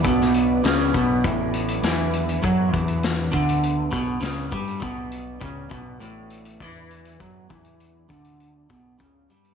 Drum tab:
HH |x-x-x-x-x-xxx-xx|x-xxx-xxx-x-x-xx|x-x-x-x-x-xxx-xx|x-xxx-xxx-x-x-xx|
SD |-o--o-------o---|----o-------o---|----------------|----------------|
BD |o-----o-o-------|o-o---o---o---o-|o---o-o-----o---|o-o---o---o-o---|